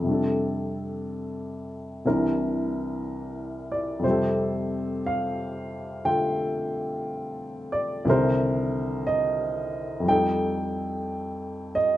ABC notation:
X:1
M:4/4
L:1/8
Q:"Swing" 1/4=60
K:F
V:1 name="Upright piano"
z6 z d | c2 f2 g3 d | c2 _e2 g3 e |]
V:2 name="Upright piano" clef=bass
[F,,C,G,DA]4 [C,,C,E,DB]4 | [F,,C,G,GA]4 [D,A,FA]4 | [C,,C,D,_E,B]4 [F,,F,G,_EA]4 |]